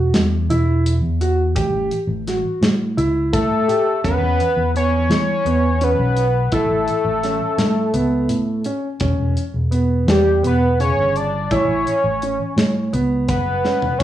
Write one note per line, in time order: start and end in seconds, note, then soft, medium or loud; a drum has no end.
0.00 0.11 E1 medium
0.00 0.19 F#4 medium
0.14 0.47 E2 medium
0.14 snare medium
0.14 closed hi-hat medium
0.49 0.99 E1 medium
0.49 0.90 E4 medium
0.49 closed hi-hat medium
0.86 closed hi-hat medium
1.02 1.52 E2 medium
1.21 1.41 F#4 medium
1.21 closed hi-hat medium
1.56 1.72 A1 medium
1.56 1.96 G4 medium
1.56 kick medium
1.56 closed hi-hat medium
1.72 1.90 A1 medium
1.91 closed hi-hat medium
2.07 2.41 A1 medium
2.27 2.68 F#4 medium
2.27 snare soft
2.27 closed hi-hat medium
2.61 2.95 A2 medium
2.61 snare medium
2.61 closed hi-hat medium
2.97 3.31 C#2 medium
2.97 3.37 E4 medium
2.97 closed hi-hat medium
3.33 3.66 A2 medium
3.33 4.00 A4 loud
3.33 4.00 E5 loud
3.33 kick loud
3.33 closed hi-hat medium
3.68 3.88 G4 medium
3.68 closed hi-hat medium
4.04 4.21 E2 medium
4.04 4.44 C#4 medium
4.04 4.71 B4 loud
4.04 4.71 F#5 loud
4.04 kick medium
4.04 closed hi-hat medium
4.21 4.38 E2 medium
4.40 closed hi-hat soft
4.57 5.07 E2 medium
4.75 5.15 B3 medium
4.75 5.85 C#5 loud
4.75 5.85 G#5 loud
4.75 closed hi-hat medium
5.10 5.43 E3 medium
5.10 snare medium
5.10 closed hi-hat medium
5.46 5.96 E2 medium
5.46 5.67 B3 medium
5.46 closed hi-hat soft
5.81 6.22 C#4 medium
5.81 6.53 B4 loud
5.81 6.53 F#5 loud
5.81 closed hi-hat medium
5.98 6.49 B1 medium
6.17 closed hi-hat medium
6.52 6.68 A1 medium
6.52 6.93 E4 medium
6.52 8.63 A4 medium
6.52 8.63 E5 medium
6.52 kick medium
6.52 closed hi-hat medium
6.69 6.86 A1 medium
6.88 closed hi-hat soft
7.04 7.38 A1 medium
7.23 7.64 C#4 medium
7.23 snare soft
7.23 closed hi-hat medium
7.58 7.92 A2 medium
7.58 snare medium
7.58 closed hi-hat medium
7.94 8.28 C#2 medium
7.94 8.34 B3 medium
7.94 closed hi-hat medium
8.29 8.63 A2 medium
8.29 closed hi-hat medium
8.65 8.86 C#4 medium
8.65 closed hi-hat soft
9.00 9.17 E1 medium
9.00 9.41 C#4 medium
9.00 kick medium
9.00 closed hi-hat medium
9.18 9.35 E1 medium
9.37 closed hi-hat medium
9.54 10.04 E1 medium
9.71 10.12 B3 medium
9.71 closed hi-hat soft
10.07 10.41 E2 medium
10.07 10.42 G4 medium
10.07 10.42 D5 medium
10.07 snare medium
10.07 closed hi-hat medium
10.43 10.93 E1 medium
10.43 10.63 B3 medium
10.43 10.79 B4 medium
10.43 10.79 F#5 medium
10.43 closed hi-hat medium
10.80 11.20 C#3 medium
10.80 11.18 C#5 loud
10.80 11.18 G#5 loud
10.80 closed hi-hat medium
10.97 11.47 G1 medium
11.16 11.53 D5 medium
11.16 11.53 A5 medium
11.16 closed hi-hat soft
11.51 11.67 A1 medium
11.51 11.91 E4 medium
11.51 12.94 C#5 loud
11.51 12.94 G#5 loud
11.51 kick medium
11.51 closed hi-hat medium
11.68 11.85 A1 medium
11.87 closed hi-hat soft
12.04 12.37 A1 medium
12.22 12.63 C#4 medium
12.22 closed hi-hat medium
12.56 12.90 A2 medium
12.56 snare medium
12.56 closed hi-hat medium
12.93 13.26 C#2 medium
12.93 13.33 B3 medium
12.93 closed hi-hat medium
13.28 13.62 F#1 medium
13.28 14.00 B4 medium
13.28 14.00 F#5 medium
13.28 kick medium
13.28 closed hi-hat medium
13.65 13.85 C#4 medium
13.65 snare soft
13.82 floor tom medium
13.99 14.03 E1 medium
13.99 14.03 C#5 medium
13.99 14.03 G#5 medium
13.99 kick loud
13.99 closed hi-hat medium
13.99 crash medium